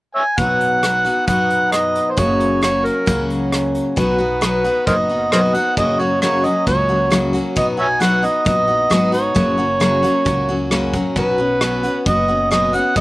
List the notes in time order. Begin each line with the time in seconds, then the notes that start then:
0.15 C#5 E5 G#5
0.37 B1 B2 F#3 B3 D#4 F#4 F#5, kick, closed hi-hat
0.61 closed hi-hat
0.83 F#3 B3 D#4 F#4, cross-stick, closed hi-hat
1.05 B3 D#4 F#4, closed hi-hat
1.27 F#2 B2 F#3 B3 D#4 F#4 F#5, kick, closed hi-hat
1.50 closed hi-hat
1.72 D#5, cross-stick, closed hi-hat
1.95 closed hi-hat
2.11 C5
2.17 F#1 F#2 C#3 F#3 A#3 C#4 F#4 C#5, kick, closed hi-hat
2.40 closed hi-hat
2.62 F#3 A#3 C#4 F#4 C#5, cross-stick, closed hi-hat
2.85 A#4, closed hi-hat
3.06 C#2 F#2 C#3 F#3 A#3 C#4 F#4, kick, closed hi-hat
3.30 closed hi-hat
3.52 cross-stick, closed hi-hat
3.75 closed hi-hat
3.96 B1 B2 F#3 B3 D#4 F#4 B4, kick, closed hi-hat
4.18 B3 D#4 F#4
4.41 B2 F#3 B3 D#4 F#4, cross-stick, closed hi-hat
4.64 B3 D#4 F#4, closed hi-hat
4.87 F#1 F#3 B3 D#4 F#4 A#4 C5 D#5, kick, closed hi-hat
5.10 B3 D#4 F#4
5.32 B2 F#3 B3 D#4 F#4 A#4 C5 D#5, cross-stick, closed hi-hat
5.54 B3 D#4 F#4 F#5, closed hi-hat
5.77 F#1 F#2 C#3 F#3 A#3 C#4 F#4 D#5, kick, closed hi-hat
5.99 F#3 A#3 C#4 F#4 C#5
6.22 F#2 C#3 F#3 A#3 C#4 F#4 C#5, cross-stick, closed hi-hat
6.44 F#3 A#3 C#4 F#4 D#5, closed hi-hat
6.66 C#2 F#3 A#3 C#4 F#4 C#5, kick, closed hi-hat
6.89 F#3 A#3 C#4 F#4
7.10 F#2 C#3 F#3 A#3 C#4 F#4, cross-stick, closed hi-hat
7.33 F#3 A#3 C#4 F#4, closed hi-hat
7.56 B1 B2 F#3 B3 D#4 F#4 D#5, kick, closed hi-hat
7.77 B3 D#4 F#4 C#5 E5 G#5
8.00 B2 F#3 B3 D#4 F#4 F#5, cross-stick, closed hi-hat
8.23 B3 D#4 F#4 D#5, closed hi-hat
8.45 A#1 F#3 B3 D#4 F#4 D#5, kick, closed hi-hat
8.68 B3 D#4 F#4
8.90 G#1 B2 F#3 B3 D#4 F#4, cross-stick, closed hi-hat
9.12 B3 D#4 F#4 C#5, closed hi-hat
9.35 F#1 F#2 C#3 F#3 A#3 C#4 F#4, kick, closed hi-hat
9.58 F#3 A#3 C#4 F#4
9.80 F#2 C#3 F#3 A#3 C#4 F#4, cross-stick, closed hi-hat
10.03 F#3 A#3 C#4 F#4, closed hi-hat
10.25 C#2 F#3 A#3 C#4 F#4, kick, closed hi-hat
10.49 F#3 A#3 C#4 F#4
10.71 F#2 C#3 F#3 A#3 C#4 F#4, cross-stick, closed hi-hat
10.93 F#3 A#3 C#4 F#4, kick, closed hi-hat
11.16 B1 B2 F#3 B3 C#4 F#4 B4, kick, closed hi-hat
11.38 B3 C#4 F#4
11.61 B2 F#3 B3 C#4 F#4, cross-stick, closed hi-hat
11.83 B3 C#4 F#4, closed hi-hat
12.06 F#1 F#3 B3 C#4 F#4 D#5, kick, closed hi-hat
12.28 B3 C#4 F#4
12.51 B2 F#3 B3 C#4 F#4 D#5, cross-stick, closed hi-hat
12.73 B3 C#4 F#4 F#5, closed hi-hat
12.96 F#1 F#2 C#3 F#3 A#3 C#4 D#5, kick, closed hi-hat